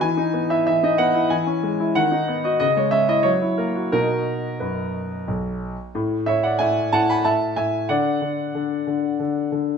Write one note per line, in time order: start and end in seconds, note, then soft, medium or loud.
0.01 0.66 E3 medium
0.01 0.51 G#5 medium
0.17 0.44 D#4 soft
0.34 0.60 B3 soft
0.50 0.77 E4 soft
0.50 0.65 E5 medium
0.67 1.29 E3 soft
0.67 0.83 E5 medium
0.83 1.09 D#4 soft
0.83 1.00 D#5 medium
0.98 1.25 B3 soft
0.98 1.31 F#5 medium
1.14 1.31 E4 soft
1.30 1.94 E3 medium
1.30 1.96 G#5 medium
1.47 1.73 C#4 soft
1.63 1.90 G#3 soft
1.80 1.96 E4 soft
1.95 2.59 D#3 medium
1.95 2.44 F#5 medium
2.12 2.38 D#4 soft
2.28 2.54 B3 soft
2.44 2.61 F#4 soft
2.44 2.58 D#5 medium
2.60 3.24 C#3 medium
2.60 2.77 D#5 medium
2.77 3.03 G#3 soft
2.77 2.94 C#5 medium
2.91 3.19 C#4 soft
2.91 3.09 E5 medium
3.08 3.26 E4 soft
3.08 3.26 D#5 medium
3.23 3.90 F#3 soft
3.23 3.58 C#5 medium
3.41 3.69 E4 soft
3.58 3.86 A#3 soft
3.58 3.91 A#4 medium
3.76 3.91 F#4 soft
3.92 4.40 B2 soft
3.92 4.47 D#4 soft
3.92 4.47 F#4 soft
3.92 4.60 A#4 medium
4.60 5.08 F#2 soft
4.60 5.28 B4 soft
5.28 5.75 B1 soft
5.95 6.25 A2 medium
6.26 6.58 A2 soft
6.26 6.43 C#5 medium
6.26 6.43 E5 medium
6.43 6.60 D5 soft
6.43 6.60 F#5 medium
6.59 6.91 A2 soft
6.59 6.91 E5 medium
6.59 6.92 G#5 medium
6.92 7.24 A2 soft
6.92 7.08 F#5 medium
6.92 7.09 A5 medium
7.10 7.25 G#5 medium
7.10 7.26 B5 medium
7.24 7.55 A2 soft
7.24 7.56 E5 medium
7.24 7.57 A5 medium
7.56 7.89 A2 soft
7.56 7.88 E5 medium
7.56 7.90 G#5 medium
7.89 8.20 D3 medium
7.89 9.47 D5 medium
7.89 9.51 F#5 medium
8.21 8.53 D3 soft
8.55 8.86 D3 soft
8.87 9.18 D3 soft
9.20 9.50 D3 soft
9.52 9.78 D3 soft